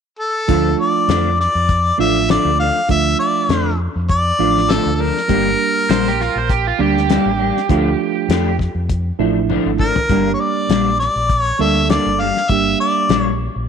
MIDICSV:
0, 0, Header, 1, 7, 480
1, 0, Start_track
1, 0, Key_signature, -1, "minor"
1, 0, Tempo, 600000
1, 394, Time_signature, 4, 2, 24, 8
1, 10949, End_track
2, 0, Start_track
2, 0, Title_t, "Harmonica"
2, 0, Program_c, 0, 22
2, 156, Note_on_c, 0, 69, 75
2, 603, Note_off_c, 0, 69, 0
2, 644, Note_on_c, 0, 74, 81
2, 1087, Note_off_c, 0, 74, 0
2, 1124, Note_on_c, 0, 74, 90
2, 1567, Note_off_c, 0, 74, 0
2, 1604, Note_on_c, 0, 76, 90
2, 1823, Note_off_c, 0, 76, 0
2, 1846, Note_on_c, 0, 74, 94
2, 2064, Note_off_c, 0, 74, 0
2, 2080, Note_on_c, 0, 77, 93
2, 2301, Note_off_c, 0, 77, 0
2, 2327, Note_on_c, 0, 76, 103
2, 2545, Note_off_c, 0, 76, 0
2, 2557, Note_on_c, 0, 74, 78
2, 3004, Note_off_c, 0, 74, 0
2, 3286, Note_on_c, 0, 74, 109
2, 3771, Note_on_c, 0, 69, 89
2, 3783, Note_off_c, 0, 74, 0
2, 3960, Note_off_c, 0, 69, 0
2, 3960, Note_on_c, 0, 69, 59
2, 4009, Note_on_c, 0, 70, 90
2, 4021, Note_off_c, 0, 69, 0
2, 5442, Note_off_c, 0, 70, 0
2, 7843, Note_on_c, 0, 70, 79
2, 8239, Note_off_c, 0, 70, 0
2, 8271, Note_on_c, 0, 73, 56
2, 8325, Note_on_c, 0, 74, 83
2, 8337, Note_off_c, 0, 73, 0
2, 8794, Note_off_c, 0, 74, 0
2, 8799, Note_on_c, 0, 74, 91
2, 9119, Note_off_c, 0, 74, 0
2, 9119, Note_on_c, 0, 73, 91
2, 9288, Note_on_c, 0, 76, 99
2, 9300, Note_off_c, 0, 73, 0
2, 9516, Note_off_c, 0, 76, 0
2, 9521, Note_on_c, 0, 74, 89
2, 9759, Note_on_c, 0, 77, 88
2, 9771, Note_off_c, 0, 74, 0
2, 9999, Note_on_c, 0, 76, 96
2, 10011, Note_off_c, 0, 77, 0
2, 10237, Note_off_c, 0, 76, 0
2, 10245, Note_on_c, 0, 74, 78
2, 10565, Note_off_c, 0, 74, 0
2, 10565, Note_on_c, 0, 73, 78
2, 10689, Note_off_c, 0, 73, 0
2, 10949, End_track
3, 0, Start_track
3, 0, Title_t, "Electric slide guitar"
3, 0, Program_c, 1, 29
3, 4726, Note_on_c, 1, 72, 82
3, 4848, Note_off_c, 1, 72, 0
3, 4865, Note_on_c, 1, 67, 83
3, 4962, Note_off_c, 1, 67, 0
3, 4967, Note_on_c, 1, 65, 77
3, 5089, Note_off_c, 1, 65, 0
3, 5102, Note_on_c, 1, 72, 76
3, 5198, Note_on_c, 1, 67, 78
3, 5200, Note_off_c, 1, 72, 0
3, 5324, Note_off_c, 1, 67, 0
3, 5336, Note_on_c, 1, 65, 76
3, 5437, Note_off_c, 1, 65, 0
3, 5440, Note_on_c, 1, 67, 87
3, 6846, Note_off_c, 1, 67, 0
3, 10949, End_track
4, 0, Start_track
4, 0, Title_t, "Reed electric piano"
4, 0, Program_c, 2, 4
4, 385, Note_on_c, 2, 53, 73
4, 389, Note_on_c, 2, 57, 72
4, 394, Note_on_c, 2, 62, 70
4, 397, Note_on_c, 2, 65, 87
4, 1080, Note_off_c, 2, 53, 0
4, 1082, Note_off_c, 2, 57, 0
4, 1085, Note_off_c, 2, 62, 0
4, 1086, Note_off_c, 2, 65, 0
4, 1581, Note_on_c, 2, 53, 60
4, 1586, Note_on_c, 2, 57, 63
4, 1590, Note_on_c, 2, 62, 60
4, 1597, Note_on_c, 2, 65, 75
4, 2107, Note_off_c, 2, 53, 0
4, 2110, Note_off_c, 2, 57, 0
4, 2111, Note_off_c, 2, 62, 0
4, 2115, Note_off_c, 2, 65, 0
4, 2310, Note_on_c, 2, 53, 61
4, 2312, Note_on_c, 2, 57, 61
4, 2316, Note_on_c, 2, 62, 56
4, 2320, Note_on_c, 2, 65, 73
4, 3003, Note_off_c, 2, 53, 0
4, 3004, Note_off_c, 2, 57, 0
4, 3006, Note_off_c, 2, 62, 0
4, 3008, Note_off_c, 2, 65, 0
4, 3511, Note_on_c, 2, 53, 62
4, 3515, Note_on_c, 2, 57, 59
4, 3520, Note_on_c, 2, 62, 63
4, 3522, Note_on_c, 2, 65, 75
4, 4032, Note_off_c, 2, 53, 0
4, 4034, Note_off_c, 2, 57, 0
4, 4037, Note_off_c, 2, 62, 0
4, 4038, Note_off_c, 2, 65, 0
4, 4224, Note_on_c, 2, 55, 63
4, 4231, Note_on_c, 2, 58, 59
4, 4234, Note_on_c, 2, 62, 57
4, 4239, Note_on_c, 2, 67, 77
4, 4920, Note_off_c, 2, 55, 0
4, 4924, Note_off_c, 2, 58, 0
4, 4925, Note_off_c, 2, 62, 0
4, 4928, Note_off_c, 2, 67, 0
4, 5430, Note_on_c, 2, 55, 76
4, 5432, Note_on_c, 2, 58, 68
4, 5438, Note_on_c, 2, 62, 70
4, 5444, Note_on_c, 2, 67, 84
4, 5952, Note_off_c, 2, 55, 0
4, 5953, Note_off_c, 2, 58, 0
4, 5956, Note_off_c, 2, 62, 0
4, 5959, Note_off_c, 2, 67, 0
4, 6152, Note_on_c, 2, 53, 77
4, 6158, Note_on_c, 2, 57, 69
4, 6163, Note_on_c, 2, 62, 70
4, 6164, Note_on_c, 2, 65, 82
4, 6844, Note_off_c, 2, 53, 0
4, 6847, Note_off_c, 2, 57, 0
4, 6850, Note_off_c, 2, 62, 0
4, 6850, Note_off_c, 2, 65, 0
4, 7349, Note_on_c, 2, 53, 76
4, 7356, Note_on_c, 2, 57, 72
4, 7357, Note_on_c, 2, 62, 69
4, 7363, Note_on_c, 2, 64, 82
4, 7871, Note_off_c, 2, 53, 0
4, 7874, Note_off_c, 2, 57, 0
4, 7875, Note_off_c, 2, 62, 0
4, 7878, Note_off_c, 2, 64, 0
4, 8078, Note_on_c, 2, 55, 64
4, 8084, Note_on_c, 2, 58, 56
4, 8088, Note_on_c, 2, 62, 56
4, 8093, Note_on_c, 2, 67, 68
4, 8767, Note_off_c, 2, 55, 0
4, 8770, Note_off_c, 2, 58, 0
4, 8772, Note_off_c, 2, 62, 0
4, 8775, Note_off_c, 2, 67, 0
4, 9273, Note_on_c, 2, 55, 69
4, 9276, Note_on_c, 2, 58, 57
4, 9280, Note_on_c, 2, 62, 59
4, 9287, Note_on_c, 2, 69, 72
4, 9793, Note_off_c, 2, 55, 0
4, 9795, Note_off_c, 2, 58, 0
4, 9797, Note_off_c, 2, 62, 0
4, 9800, Note_off_c, 2, 69, 0
4, 9996, Note_on_c, 2, 55, 66
4, 10004, Note_on_c, 2, 58, 62
4, 10008, Note_on_c, 2, 62, 59
4, 10013, Note_on_c, 2, 67, 67
4, 10686, Note_off_c, 2, 55, 0
4, 10690, Note_off_c, 2, 58, 0
4, 10693, Note_off_c, 2, 62, 0
4, 10695, Note_off_c, 2, 67, 0
4, 10949, End_track
5, 0, Start_track
5, 0, Title_t, "Clean electric guitar"
5, 0, Program_c, 3, 27
5, 390, Note_on_c, 3, 50, 69
5, 392, Note_on_c, 3, 53, 72
5, 398, Note_on_c, 3, 57, 74
5, 400, Note_on_c, 3, 62, 76
5, 545, Note_off_c, 3, 50, 0
5, 546, Note_off_c, 3, 53, 0
5, 549, Note_off_c, 3, 57, 0
5, 550, Note_off_c, 3, 62, 0
5, 869, Note_on_c, 3, 50, 63
5, 874, Note_on_c, 3, 53, 68
5, 878, Note_on_c, 3, 57, 73
5, 881, Note_on_c, 3, 62, 75
5, 1024, Note_off_c, 3, 50, 0
5, 1027, Note_off_c, 3, 53, 0
5, 1029, Note_off_c, 3, 57, 0
5, 1030, Note_off_c, 3, 62, 0
5, 1588, Note_on_c, 3, 62, 48
5, 1597, Note_on_c, 3, 57, 47
5, 1604, Note_on_c, 3, 53, 38
5, 1744, Note_off_c, 3, 62, 0
5, 1749, Note_off_c, 3, 57, 0
5, 1752, Note_off_c, 3, 53, 0
5, 1830, Note_on_c, 3, 50, 74
5, 1833, Note_on_c, 3, 53, 78
5, 1837, Note_on_c, 3, 57, 81
5, 1841, Note_on_c, 3, 62, 79
5, 1985, Note_off_c, 3, 50, 0
5, 1987, Note_off_c, 3, 53, 0
5, 1989, Note_off_c, 3, 57, 0
5, 1991, Note_off_c, 3, 62, 0
5, 2073, Note_on_c, 3, 62, 52
5, 2083, Note_on_c, 3, 57, 40
5, 2091, Note_on_c, 3, 53, 36
5, 2227, Note_off_c, 3, 62, 0
5, 2232, Note_off_c, 3, 57, 0
5, 2236, Note_off_c, 3, 53, 0
5, 2794, Note_on_c, 3, 50, 61
5, 2800, Note_on_c, 3, 53, 74
5, 2803, Note_on_c, 3, 57, 73
5, 2806, Note_on_c, 3, 62, 86
5, 2947, Note_off_c, 3, 50, 0
5, 2951, Note_off_c, 3, 53, 0
5, 2952, Note_off_c, 3, 57, 0
5, 2954, Note_off_c, 3, 62, 0
5, 3512, Note_on_c, 3, 62, 53
5, 3519, Note_on_c, 3, 57, 44
5, 3527, Note_on_c, 3, 53, 43
5, 3667, Note_off_c, 3, 62, 0
5, 3670, Note_off_c, 3, 57, 0
5, 3674, Note_off_c, 3, 53, 0
5, 3752, Note_on_c, 3, 50, 73
5, 3755, Note_on_c, 3, 53, 83
5, 3758, Note_on_c, 3, 57, 81
5, 3761, Note_on_c, 3, 62, 83
5, 3907, Note_off_c, 3, 50, 0
5, 3908, Note_off_c, 3, 53, 0
5, 3910, Note_off_c, 3, 57, 0
5, 3911, Note_off_c, 3, 62, 0
5, 3990, Note_on_c, 3, 62, 49
5, 4000, Note_on_c, 3, 57, 42
5, 4007, Note_on_c, 3, 53, 41
5, 4146, Note_off_c, 3, 62, 0
5, 4151, Note_off_c, 3, 57, 0
5, 4154, Note_off_c, 3, 53, 0
5, 4228, Note_on_c, 3, 43, 68
5, 4233, Note_on_c, 3, 55, 69
5, 4238, Note_on_c, 3, 58, 67
5, 4239, Note_on_c, 3, 62, 70
5, 4385, Note_off_c, 3, 43, 0
5, 4387, Note_off_c, 3, 55, 0
5, 4390, Note_off_c, 3, 58, 0
5, 4390, Note_off_c, 3, 62, 0
5, 4715, Note_on_c, 3, 43, 74
5, 4718, Note_on_c, 3, 55, 80
5, 4722, Note_on_c, 3, 58, 85
5, 4724, Note_on_c, 3, 62, 92
5, 4868, Note_off_c, 3, 43, 0
5, 4870, Note_off_c, 3, 55, 0
5, 4872, Note_off_c, 3, 58, 0
5, 4873, Note_off_c, 3, 62, 0
5, 5432, Note_on_c, 3, 62, 60
5, 5441, Note_on_c, 3, 58, 50
5, 5449, Note_on_c, 3, 55, 46
5, 5587, Note_off_c, 3, 62, 0
5, 5592, Note_off_c, 3, 58, 0
5, 5595, Note_off_c, 3, 55, 0
5, 5673, Note_on_c, 3, 43, 82
5, 5677, Note_on_c, 3, 55, 89
5, 5682, Note_on_c, 3, 58, 93
5, 5684, Note_on_c, 3, 62, 93
5, 5827, Note_off_c, 3, 43, 0
5, 5830, Note_off_c, 3, 55, 0
5, 5832, Note_off_c, 3, 58, 0
5, 5833, Note_off_c, 3, 62, 0
5, 5913, Note_on_c, 3, 62, 53
5, 5923, Note_on_c, 3, 58, 41
5, 5930, Note_on_c, 3, 55, 44
5, 6068, Note_off_c, 3, 62, 0
5, 6072, Note_off_c, 3, 58, 0
5, 6076, Note_off_c, 3, 55, 0
5, 6154, Note_on_c, 3, 50, 64
5, 6159, Note_on_c, 3, 53, 78
5, 6162, Note_on_c, 3, 57, 85
5, 6164, Note_on_c, 3, 62, 87
5, 6308, Note_off_c, 3, 50, 0
5, 6310, Note_off_c, 3, 53, 0
5, 6312, Note_off_c, 3, 57, 0
5, 6313, Note_off_c, 3, 62, 0
5, 6638, Note_on_c, 3, 50, 77
5, 6641, Note_on_c, 3, 53, 79
5, 6646, Note_on_c, 3, 57, 80
5, 6649, Note_on_c, 3, 62, 88
5, 6790, Note_off_c, 3, 50, 0
5, 6791, Note_off_c, 3, 53, 0
5, 6794, Note_off_c, 3, 57, 0
5, 6795, Note_off_c, 3, 62, 0
5, 7354, Note_on_c, 3, 62, 56
5, 7364, Note_on_c, 3, 57, 49
5, 7372, Note_on_c, 3, 53, 45
5, 7508, Note_off_c, 3, 62, 0
5, 7513, Note_off_c, 3, 57, 0
5, 7517, Note_off_c, 3, 53, 0
5, 7595, Note_on_c, 3, 50, 85
5, 7601, Note_on_c, 3, 53, 75
5, 7602, Note_on_c, 3, 57, 94
5, 7606, Note_on_c, 3, 62, 92
5, 7748, Note_off_c, 3, 50, 0
5, 7751, Note_off_c, 3, 53, 0
5, 7752, Note_off_c, 3, 57, 0
5, 7754, Note_off_c, 3, 62, 0
5, 7834, Note_on_c, 3, 62, 41
5, 7843, Note_on_c, 3, 57, 43
5, 7850, Note_on_c, 3, 53, 33
5, 7988, Note_off_c, 3, 62, 0
5, 7992, Note_off_c, 3, 57, 0
5, 7996, Note_off_c, 3, 53, 0
5, 8075, Note_on_c, 3, 43, 64
5, 8078, Note_on_c, 3, 55, 60
5, 8082, Note_on_c, 3, 58, 67
5, 8087, Note_on_c, 3, 62, 66
5, 8228, Note_off_c, 3, 43, 0
5, 8230, Note_off_c, 3, 55, 0
5, 8232, Note_off_c, 3, 58, 0
5, 8234, Note_off_c, 3, 62, 0
5, 8554, Note_on_c, 3, 43, 64
5, 8558, Note_on_c, 3, 55, 70
5, 8561, Note_on_c, 3, 58, 69
5, 8564, Note_on_c, 3, 62, 80
5, 8708, Note_off_c, 3, 43, 0
5, 8710, Note_off_c, 3, 55, 0
5, 8711, Note_off_c, 3, 58, 0
5, 8713, Note_off_c, 3, 62, 0
5, 9274, Note_on_c, 3, 62, 51
5, 9282, Note_on_c, 3, 58, 44
5, 9289, Note_on_c, 3, 55, 37
5, 9428, Note_off_c, 3, 62, 0
5, 9432, Note_off_c, 3, 58, 0
5, 9435, Note_off_c, 3, 55, 0
5, 9516, Note_on_c, 3, 43, 73
5, 9518, Note_on_c, 3, 55, 76
5, 9522, Note_on_c, 3, 58, 75
5, 9526, Note_on_c, 3, 62, 72
5, 9669, Note_off_c, 3, 43, 0
5, 9670, Note_off_c, 3, 55, 0
5, 9672, Note_off_c, 3, 58, 0
5, 9674, Note_off_c, 3, 62, 0
5, 9756, Note_on_c, 3, 62, 45
5, 9764, Note_on_c, 3, 58, 43
5, 9773, Note_on_c, 3, 55, 40
5, 9909, Note_off_c, 3, 62, 0
5, 9913, Note_off_c, 3, 58, 0
5, 9917, Note_off_c, 3, 55, 0
5, 10476, Note_on_c, 3, 43, 71
5, 10481, Note_on_c, 3, 55, 74
5, 10484, Note_on_c, 3, 58, 70
5, 10487, Note_on_c, 3, 62, 79
5, 10629, Note_off_c, 3, 43, 0
5, 10631, Note_off_c, 3, 55, 0
5, 10633, Note_off_c, 3, 58, 0
5, 10634, Note_off_c, 3, 62, 0
5, 10949, End_track
6, 0, Start_track
6, 0, Title_t, "Fingered electric bass"
6, 0, Program_c, 4, 33
6, 391, Note_on_c, 4, 38, 83
6, 585, Note_off_c, 4, 38, 0
6, 865, Note_on_c, 4, 41, 85
6, 1168, Note_off_c, 4, 41, 0
6, 1240, Note_on_c, 4, 41, 76
6, 1523, Note_off_c, 4, 41, 0
6, 1590, Note_on_c, 4, 33, 81
6, 1891, Note_off_c, 4, 33, 0
6, 1958, Note_on_c, 4, 38, 73
6, 2155, Note_off_c, 4, 38, 0
6, 2314, Note_on_c, 4, 38, 84
6, 2508, Note_off_c, 4, 38, 0
6, 2791, Note_on_c, 4, 41, 87
6, 3092, Note_off_c, 4, 41, 0
6, 3164, Note_on_c, 4, 41, 78
6, 3446, Note_off_c, 4, 41, 0
6, 3514, Note_on_c, 4, 33, 80
6, 3814, Note_off_c, 4, 33, 0
6, 3883, Note_on_c, 4, 38, 70
6, 4078, Note_off_c, 4, 38, 0
6, 4234, Note_on_c, 4, 31, 83
6, 4428, Note_off_c, 4, 31, 0
6, 4713, Note_on_c, 4, 34, 91
6, 5013, Note_off_c, 4, 34, 0
6, 5083, Note_on_c, 4, 34, 77
6, 5366, Note_off_c, 4, 34, 0
6, 5432, Note_on_c, 4, 38, 78
6, 5733, Note_off_c, 4, 38, 0
6, 5805, Note_on_c, 4, 33, 77
6, 5999, Note_off_c, 4, 33, 0
6, 6154, Note_on_c, 4, 38, 79
6, 6348, Note_off_c, 4, 38, 0
6, 6628, Note_on_c, 4, 41, 88
6, 6930, Note_off_c, 4, 41, 0
6, 6997, Note_on_c, 4, 41, 77
6, 7282, Note_off_c, 4, 41, 0
6, 7352, Note_on_c, 4, 33, 78
6, 7652, Note_off_c, 4, 33, 0
6, 7724, Note_on_c, 4, 32, 71
6, 7919, Note_off_c, 4, 32, 0
6, 8074, Note_on_c, 4, 31, 86
6, 8268, Note_off_c, 4, 31, 0
6, 8552, Note_on_c, 4, 34, 85
6, 8853, Note_off_c, 4, 34, 0
6, 8924, Note_on_c, 4, 34, 74
6, 9206, Note_off_c, 4, 34, 0
6, 9274, Note_on_c, 4, 38, 79
6, 9574, Note_off_c, 4, 38, 0
6, 9648, Note_on_c, 4, 31, 81
6, 9841, Note_off_c, 4, 31, 0
6, 9992, Note_on_c, 4, 31, 80
6, 10187, Note_off_c, 4, 31, 0
6, 10472, Note_on_c, 4, 34, 96
6, 10773, Note_off_c, 4, 34, 0
6, 10846, Note_on_c, 4, 34, 74
6, 10949, Note_off_c, 4, 34, 0
6, 10949, End_track
7, 0, Start_track
7, 0, Title_t, "Drums"
7, 390, Note_on_c, 9, 42, 61
7, 391, Note_on_c, 9, 36, 99
7, 470, Note_off_c, 9, 42, 0
7, 471, Note_off_c, 9, 36, 0
7, 870, Note_on_c, 9, 42, 54
7, 878, Note_on_c, 9, 38, 99
7, 950, Note_off_c, 9, 42, 0
7, 958, Note_off_c, 9, 38, 0
7, 1121, Note_on_c, 9, 38, 29
7, 1201, Note_off_c, 9, 38, 0
7, 1352, Note_on_c, 9, 36, 95
7, 1352, Note_on_c, 9, 42, 54
7, 1432, Note_off_c, 9, 36, 0
7, 1432, Note_off_c, 9, 42, 0
7, 1832, Note_on_c, 9, 42, 56
7, 1840, Note_on_c, 9, 38, 93
7, 1912, Note_off_c, 9, 42, 0
7, 1920, Note_off_c, 9, 38, 0
7, 2313, Note_on_c, 9, 36, 97
7, 2313, Note_on_c, 9, 42, 60
7, 2393, Note_off_c, 9, 36, 0
7, 2393, Note_off_c, 9, 42, 0
7, 2795, Note_on_c, 9, 42, 57
7, 2803, Note_on_c, 9, 38, 100
7, 2875, Note_off_c, 9, 42, 0
7, 2883, Note_off_c, 9, 38, 0
7, 3275, Note_on_c, 9, 42, 50
7, 3276, Note_on_c, 9, 36, 94
7, 3355, Note_off_c, 9, 42, 0
7, 3356, Note_off_c, 9, 36, 0
7, 3658, Note_on_c, 9, 38, 30
7, 3738, Note_off_c, 9, 38, 0
7, 3757, Note_on_c, 9, 42, 51
7, 3765, Note_on_c, 9, 38, 103
7, 3837, Note_off_c, 9, 42, 0
7, 3845, Note_off_c, 9, 38, 0
7, 4135, Note_on_c, 9, 38, 28
7, 4215, Note_off_c, 9, 38, 0
7, 4234, Note_on_c, 9, 42, 58
7, 4235, Note_on_c, 9, 36, 95
7, 4314, Note_off_c, 9, 42, 0
7, 4315, Note_off_c, 9, 36, 0
7, 4717, Note_on_c, 9, 42, 59
7, 4725, Note_on_c, 9, 38, 108
7, 4797, Note_off_c, 9, 42, 0
7, 4805, Note_off_c, 9, 38, 0
7, 4965, Note_on_c, 9, 38, 30
7, 5045, Note_off_c, 9, 38, 0
7, 5196, Note_on_c, 9, 36, 94
7, 5198, Note_on_c, 9, 42, 52
7, 5276, Note_off_c, 9, 36, 0
7, 5278, Note_off_c, 9, 42, 0
7, 5579, Note_on_c, 9, 38, 29
7, 5659, Note_off_c, 9, 38, 0
7, 5676, Note_on_c, 9, 42, 57
7, 5684, Note_on_c, 9, 38, 92
7, 5756, Note_off_c, 9, 42, 0
7, 5764, Note_off_c, 9, 38, 0
7, 6056, Note_on_c, 9, 38, 29
7, 6136, Note_off_c, 9, 38, 0
7, 6156, Note_on_c, 9, 36, 100
7, 6158, Note_on_c, 9, 42, 59
7, 6236, Note_off_c, 9, 36, 0
7, 6238, Note_off_c, 9, 42, 0
7, 6637, Note_on_c, 9, 42, 57
7, 6645, Note_on_c, 9, 38, 104
7, 6717, Note_off_c, 9, 42, 0
7, 6725, Note_off_c, 9, 38, 0
7, 6875, Note_on_c, 9, 36, 73
7, 6882, Note_on_c, 9, 38, 29
7, 6955, Note_off_c, 9, 36, 0
7, 6962, Note_off_c, 9, 38, 0
7, 7116, Note_on_c, 9, 36, 92
7, 7116, Note_on_c, 9, 42, 54
7, 7196, Note_off_c, 9, 36, 0
7, 7196, Note_off_c, 9, 42, 0
7, 7598, Note_on_c, 9, 48, 53
7, 7678, Note_off_c, 9, 48, 0
7, 7835, Note_on_c, 9, 36, 78
7, 7915, Note_off_c, 9, 36, 0
7, 7967, Note_on_c, 9, 43, 79
7, 8047, Note_off_c, 9, 43, 0
7, 8075, Note_on_c, 9, 42, 55
7, 8076, Note_on_c, 9, 36, 103
7, 8155, Note_off_c, 9, 42, 0
7, 8156, Note_off_c, 9, 36, 0
7, 8557, Note_on_c, 9, 42, 55
7, 8565, Note_on_c, 9, 38, 100
7, 8637, Note_off_c, 9, 42, 0
7, 8645, Note_off_c, 9, 38, 0
7, 8807, Note_on_c, 9, 38, 29
7, 8887, Note_off_c, 9, 38, 0
7, 9036, Note_on_c, 9, 36, 89
7, 9037, Note_on_c, 9, 42, 56
7, 9116, Note_off_c, 9, 36, 0
7, 9117, Note_off_c, 9, 42, 0
7, 9516, Note_on_c, 9, 42, 55
7, 9524, Note_on_c, 9, 38, 98
7, 9596, Note_off_c, 9, 42, 0
7, 9604, Note_off_c, 9, 38, 0
7, 9895, Note_on_c, 9, 38, 30
7, 9975, Note_off_c, 9, 38, 0
7, 9995, Note_on_c, 9, 42, 60
7, 9996, Note_on_c, 9, 36, 95
7, 10075, Note_off_c, 9, 42, 0
7, 10076, Note_off_c, 9, 36, 0
7, 10475, Note_on_c, 9, 42, 60
7, 10483, Note_on_c, 9, 38, 101
7, 10555, Note_off_c, 9, 42, 0
7, 10563, Note_off_c, 9, 38, 0
7, 10949, End_track
0, 0, End_of_file